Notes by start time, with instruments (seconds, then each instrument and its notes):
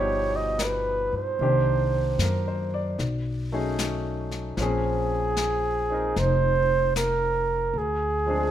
Already playing: upright bass G1, grand piano B2 F3 G3 D#4 G4, flugelhorn C#5
0.36 flugelhorn D#5
0.59 flugelhorn A#4 B4, snare, hi-hat pedal
1.13 upright bass G2
1.17 flugelhorn C5
1.39 upright bass C2, grand piano D#3 A#3 C4 D4 G4, brush sweep
2.18 upright bass F#2, grand piano A#4, snare, hi-hat pedal
2.48 grand piano C5
2.74 grand piano D5
2.99 upright bass B1, brush sweep, snare
3.52 grand piano F#3 A3 C#4 D#4 G#4
3.79 snare, hi-hat pedal
4.31 snare
4.57 upright bass A#1, grand piano F3 A#3 C4 C#4, flugelhorn G#4, brush sweep, snare
4.62 grand piano G#4
5.37 snare, hi-hat pedal
5.90 grand piano C4 D#4 A#4
6.16 upright bass F1, flugelhorn C5, brush sweep, snare
6.96 flugelhorn A#4, snare, hi-hat pedal
7.74 upright bass D2, brush sweep
7.78 flugelhorn G#4
8.26 grand piano F3 G#3 C4 D4
8.30 grand piano G#4